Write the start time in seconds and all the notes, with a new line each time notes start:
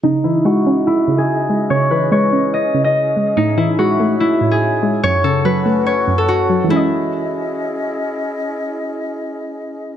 0.03 C#3 C#4 D#4 E4 G#4 D#5
0.24 E3 E4
0.45 G#3 F#4
0.66 C#4
0.87 E4
1.08 C#3
1.18 G#4
1.50 G#3
1.70 C#3 C#5
1.91 E3 B4
2.12 G#3 C#5
2.33 C#4
2.54 D#5
2.74 C#3
2.84 D#5
3.17 G#3
3.37 A2 D#4 C#5 E5
3.57 E3 E4
3.79 G#3 F#4
4.00 A3
4.20 E4
4.41 A2
4.51 G#4
4.83 G#3
5.03 F#2 C#4 F#4 C#5 F#5
5.24 C#3 A4
5.45 F#3 B4
5.66 A3
5.86 C#5
6.08 F#2
6.18 A4
6.28 F#4
6.50 F#3
6.64 E3
6.68 G#3 C#4 E4 G#4 D#5
6.76 D#5